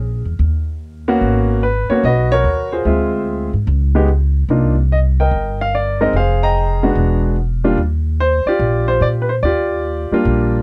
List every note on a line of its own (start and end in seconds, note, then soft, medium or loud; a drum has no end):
0.00 0.21 A#1 medium
0.00 0.22 G#4 soft
0.25 0.38 E2 medium
0.39 1.17 D#2 medium
1.08 1.60 A#3 medium
1.08 1.60 B3 medium
1.08 1.60 C#4 medium
1.08 1.60 F#4 medium
1.21 1.85 G#1 medium
1.63 1.88 B4 medium
1.89 2.02 A#3 medium
1.89 2.03 B3 medium
1.89 2.03 C#4 medium
1.89 2.03 F#4 medium
1.89 2.04 C#5 medium
1.89 muted upright bass stroke soft
2.03 2.41 B1 medium
2.03 2.32 F#4 medium
2.03 2.83 B4 medium
2.03 2.32 D#5 medium
2.32 2.83 F#4 medium
2.32 2.83 A#4 medium
2.32 2.73 C#5 loud
2.44 2.82 D#2 medium
2.72 2.85 F4 soft
2.72 3.50 G#4 medium
2.72 3.23 C5 medium
2.85 3.50 D2 medium
2.85 3.48 G#3 medium
2.85 3.48 C4 medium
2.85 3.49 F4 medium
2.85 3.49 E5 medium
3.53 3.66 G#2 medium
3.67 4.45 C#2 medium
3.95 4.07 G#3 medium
3.95 4.07 B3 medium
3.95 4.07 D#4 medium
3.95 4.08 G4 medium
4.49 5.27 C2 medium
4.49 4.74 A#3 medium
4.49 4.75 D4 medium
4.49 4.74 D#4 soft
4.49 4.75 F4 medium
4.92 4.98 D#5 medium
5.20 5.97 A#4 medium
5.20 5.97 D#5 medium
5.20 5.61 G5 medium
5.31 6.10 G1 medium
5.61 5.74 F5 medium
5.75 6.02 D5 medium
6.01 6.13 G#3 medium
6.01 6.13 C4 medium
6.01 6.13 D#4 medium
6.01 6.13 A#4 medium
6.01 6.14 D#5 medium
6.13 6.92 F1 medium
6.13 6.93 G#4 medium
6.13 6.93 C5 medium
6.13 6.43 F5 medium
6.43 6.93 D#5 medium
6.43 6.93 G5 medium
6.43 7.20 A#5 medium
6.83 7.35 G#3 medium
6.83 7.35 B3 medium
6.83 7.35 D4 medium
6.83 7.35 F#4 medium
6.95 7.74 E1 medium
7.64 7.77 G3 medium
7.64 7.77 A#3 medium
7.64 7.77 D4 medium
7.64 7.77 F4 medium
7.77 8.42 D#2 medium
8.20 8.48 C5 medium
8.46 9.26 F4 medium
8.46 9.26 G4 medium
8.46 8.89 D5 medium
8.46 muted upright bass stroke soft
8.59 8.98 A#1 medium
8.88 9.02 C5 medium
9.01 9.40 A#2 medium
9.01 9.07 D5 medium
9.22 9.29 B4 medium
9.29 9.34 C5 medium
9.43 10.07 D#2 medium
9.43 10.12 F4 medium
9.43 10.62 G4 medium
9.43 10.62 D5 medium
10.11 10.62 G3 medium
10.11 10.62 A#3 medium
10.11 10.62 D4 medium
10.11 10.62 F4 medium
10.11 muted upright bass stroke soft
10.25 10.62 A#1 medium